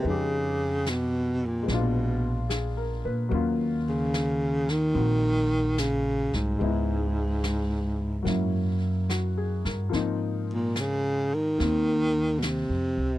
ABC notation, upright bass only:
X:1
M:4/4
L:1/8
Q:"Swing" 1/4=73
K:Ebdor
V:1 name="Upright bass" clef=bass
F,,4 B,,,3 B,, | E,,4 B,,,3 C,, | D,,4 G,,3 =G,, | A,,4 E,,2- (3E,, F,, D,, |]